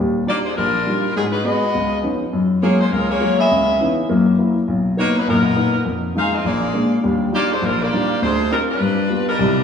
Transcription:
0.00 grand piano D#2 G3
0.27 grand piano G3 D4 D#4 F4, saxophone section A#3 F4 G4 D5
0.45 saxophone section G#3 D4 F4 C5
0.57 grand piano A#1, saxophone section G3 D4 F4 A#4
0.86 grand piano G3 D4 D#4 F4
1.15 grand piano G#2, saxophone section F#3 B3 D#4 G#4
1.32 saxophone section G#3 D#4 F#4 B4
1.44 grand piano G#3 B3 F#4, saxophone section B3 F#4 G#4 D#5
1.74 grand piano C#2
2.04 grand piano F3 B3 C#4 D#4
2.33 grand piano F#2
2.62 grand piano F#3 G#3 A#3 F4, saxophone section A#3 F4 G#4 C#5
2.81 saxophone section G#3 C#4 F4 C5
2.91 grand piano C#2, saxophone section G#3 C#4 F4 A#4
3.09 saxophone section A#3 F4 G#4 C#5
3.20 grand piano F#3 G#3 A#3 F4
3.39 saxophone section B3 G#4 D#5 E5
3.51 grand piano C#2 C#3
3.80 grand piano E3 B3 C#4 D#4
4.09 grand piano F#2 A#3
4.39 grand piano F#3 A#3 E4
4.68 grand piano B1
4.97 grand piano A#3 B3 D#4, saxophone section A#3 D#4 F#4 C#5
5.18 saxophone section F#3 A#3 D#4 B4
5.28 grand piano F#1 A#2, saxophone section F#3 B3 D#4 A#4
5.57 grand piano A#3 B3 D#4
5.85 grand piano F2
6.15 grand piano F3 G#3 D#4, saxophone section D#4 G#4 C5 F5
6.34 saxophone section C4 F4 G#4 D#5
6.45 grand piano A#1, saxophone section A#3 F4 G#4 D5
6.74 grand piano G#3 A#3 D4
7.04 grand piano D#2 G3
7.32 grand piano G3 D4 D#4 F4, saxophone section A#3 F4 G4 D5
7.53 saxophone section G#3 D4 F4 C5
7.62 grand piano A#1, saxophone section G3 D4 F4 A#4
7.82 saxophone section A#3 F4 G4 D5
7.92 grand piano G3 D4 D#4 F4
8.22 grand piano D2, saxophone section G#3 D4 F4 C5
8.51 saxophone section G3 C4 D#4 A#4, grand piano C4 D4 F4
8.70 saxophone section G3 D4 F4 B4
8.80 grand piano G2
9.10 grand piano G3 B3 F4
9.28 saxophone section G3 D4 D#4 A#4
9.39 grand piano C2 C3

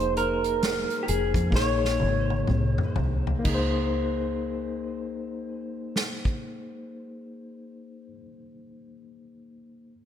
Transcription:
Already playing: fingered electric bass F1, tine electric piano A#3 D#4 G#4 C5, clean electric guitar C5
0.00 closed hi-hat
0.17 clean electric guitar A#4, closed hi-hat
0.44 closed hi-hat
0.63 snare, closed hi-hat
0.90 closed hi-hat
1.03 clean electric guitar G4
1.08 fingered electric bass F1, clean electric guitar G#4, closed hi-hat
1.34 fingered electric bass F2, kick, closed hi-hat
1.51 fingered electric bass A#1, tine electric piano A#3 D#4, kick
1.55 tine electric piano G#4 C#5, clean electric guitar C#5, snare
1.85 snare
2.00 fingered electric bass G#1, high tom
2.30 high tom
2.47 fingered electric bass C2, mid tom
2.78 mid tom
2.96 fingered electric bass C2, floor tom
3.27 floor tom
3.39 tine electric piano A#3
3.44 fingered electric bass C#2, tine electric piano D#4, kick, crash
3.49 tine electric piano G#4
3.55 tine electric piano C5
5.96 snare
6.25 kick

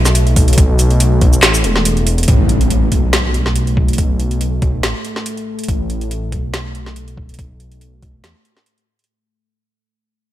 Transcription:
Already playing: detuned saw bass B1, ambient pad A3
0.05 snare, shaker
0.15 closed hi-hat
0.27 closed hi-hat
0.36 kick, open hi-hat
0.48 closed hi-hat
0.53 closed hi-hat
0.58 kick, closed hi-hat
0.79 closed hi-hat, shaker
0.90 closed hi-hat
1.00 closed hi-hat
1.21 detuned saw bass B1, kick, closed hi-hat
1.33 shaker
1.43 detuned saw bass A1, snare, clap, closed hi-hat
1.54 shaker
1.64 detuned saw bass E1, closed hi-hat
1.76 snare
1.85 closed hi-hat
1.97 closed hi-hat
2.07 open hi-hat
2.18 closed hi-hat
2.23 closed hi-hat
2.28 detuned saw bass A1, ambient pad A3, kick, closed hi-hat, impact
2.49 closed hi-hat
2.61 closed hi-hat
2.70 closed hi-hat
2.92 detuned saw bass B1, kick, closed hi-hat
3.13 snare, closed hi-hat
3.34 closed hi-hat
3.46 snare
3.56 closed hi-hat
3.67 closed hi-hat
3.77 kick
3.88 closed hi-hat
3.93 closed hi-hat
3.98 kick, closed hi-hat
4.20 closed hi-hat
4.31 closed hi-hat
4.41 closed hi-hat
4.62 detuned saw bass B1, kick, closed hi-hat
4.83 detuned saw bass A1, snare, closed hi-hat
5.05 closed hi-hat
5.16 snare
5.26 closed hi-hat
5.37 closed hi-hat
5.59 closed hi-hat
5.64 closed hi-hat
5.68 detuned saw bass A1, kick, closed hi-hat
5.90 closed hi-hat
6.01 closed hi-hat
6.11 closed hi-hat
6.32 detuned saw bass B1, kick, closed hi-hat
6.54 snare, closed hi-hat
6.75 closed hi-hat
6.86 snare
6.96 closed hi-hat
7.08 closed hi-hat
7.17 kick
7.29 closed hi-hat
7.34 closed hi-hat
7.39 kick, closed hi-hat
7.60 closed hi-hat
7.72 closed hi-hat
7.81 closed hi-hat
8.02 detuned saw bass B1, kick, closed hi-hat
8.24 detuned saw bass E2, snare, closed hi-hat
8.45 closed hi-hat
8.57 snare
8.66 closed hi-hat
8.78 closed hi-hat
8.99 closed hi-hat
9.04 closed hi-hat

